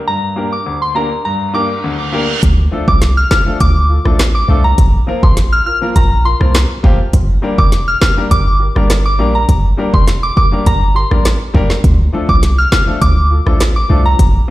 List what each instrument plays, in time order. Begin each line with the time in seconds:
0.07 grand piano G2, synth bell A#5
0.36 grand piano A#3 D4 G4 A#4
0.53 synth bell D6
0.66 grand piano D2
0.82 synth bell C6
0.95 grand piano A#3 D4 G4 A#4, synth bell A#5
1.25 grand piano G2, synth bell A#5, reverse cymbal
1.54 grand piano A#3 D4 G4 A#4, synth bell D6
1.84 grand piano D2
2.12 grand piano A#3 D4 G4 A#4
2.43 808-style bass D2, kick, closed hi-hat
2.71 grand piano F3 A3 D4 F4 A4
2.88 808-style bass C2, synth bell D6, kick
3.02 snare, closed hi-hat
3.17 synth bell F6
3.30 grand piano F4 A4, synth bell F6, kick, cross-stick, snare
3.46 grand piano F3 A3 D4 F4 A4
3.60 808-style bass D2, synth bell D6, kick, closed hi-hat
3.89 grand piano F4 A4
4.05 808-style bass A1, grand piano F3 A3 D4 F4 A4, cross-stick
4.19 cross-stick, snare, closed hi-hat
4.35 synth bell D6
4.48 808-style bass C2, grand piano F3 A3 D4 F4 A4
4.64 synth bell A#5
4.78 808-style bass A#1, kick, closed hi-hat
5.07 grand piano F3 A#3 C4 F4 A#4
5.23 808-style bass A1, synth bell C6, kick
5.37 snare, closed hi-hat
5.53 synth bell F6
5.66 grand piano F4 A#4, synth bell F6
5.81 grand piano F3 A#3 C4 F4 A#4
5.96 808-style bass A#1, synth bell A#5, kick, closed hi-hat
6.24 grand piano F4 A#4, synth bell C6
6.40 808-style bass C2, grand piano F3 A#3 C4 F4 A#4, cross-stick
6.55 cross-stick, snare, closed hi-hat
6.83 808-style bass A1, grand piano F3 A#3 C4 F4 G4, kick
7.13 808-style bass G1, kick, closed hi-hat
7.42 grand piano G3 A#3 D4 G4 A#4
7.58 808-style bass F1, synth bell D6, kick
7.72 snare, closed hi-hat
7.88 synth bell F6
8.01 grand piano G4 A#4, synth bell F6, kick, cross-stick, snare
8.17 grand piano G3 A#3 D4 G4 A#4
8.31 808-style bass G1, synth bell D6, kick, closed hi-hat
8.60 grand piano G4 A#4
8.75 808-style bass G1, grand piano G3 A#3 D4 G4 A#4, cross-stick
8.90 cross-stick, snare, closed hi-hat
9.06 synth bell D6
9.19 808-style bass A#1, grand piano G3 A#3 D4 G4 A#4
9.35 synth bell A#5
9.49 808-style bass G1, kick, closed hi-hat
9.77 grand piano G3 A#3 D4 G4 A#4
9.94 808-style bass F1, synth bell C6, kick
10.08 snare, closed hi-hat
10.23 synth bell D6
10.36 grand piano G4 A#4, synth bell D6, kick
10.52 grand piano G3 A#3 D4 G4 A#4
10.66 808-style bass G1, synth bell A#5, kick, closed hi-hat
10.95 grand piano G4 A#4, synth bell C6
11.10 808-style bass A1, grand piano G3 A#3 D4 G4 A#4, cross-stick
11.25 cross-stick, snare, closed hi-hat
11.54 808-style bass G1, grand piano G3 A#3 D4 G4 A#4, kick
11.70 snare
11.84 808-style bass D2, kick, closed hi-hat
12.13 grand piano F3 A3 D4 F4 A4
12.29 808-style bass C2, synth bell D6, kick
12.43 snare, closed hi-hat
12.58 synth bell F6
12.71 grand piano F4 A4, synth bell F6, kick, cross-stick, snare
12.87 grand piano F3 A3 D4 F4 A4
13.01 808-style bass D2, synth bell D6, kick, closed hi-hat
13.30 grand piano F4 A4
13.46 808-style bass A1, grand piano F3 A3 D4 F4 A4, cross-stick
13.60 cross-stick, snare, closed hi-hat
13.76 synth bell D6
13.89 808-style bass C2, grand piano F3 A3 D4 F4 A4
14.06 synth bell A#5
14.19 808-style bass A#1, kick, closed hi-hat